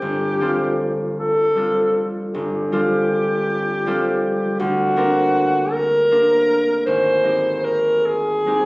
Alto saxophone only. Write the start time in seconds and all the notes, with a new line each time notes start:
Already playing: G4
1.19 A4
2.32 G4
4.59 F#4
5.72 A#4
6.85 C5
7.64 A#4
8.06 G#4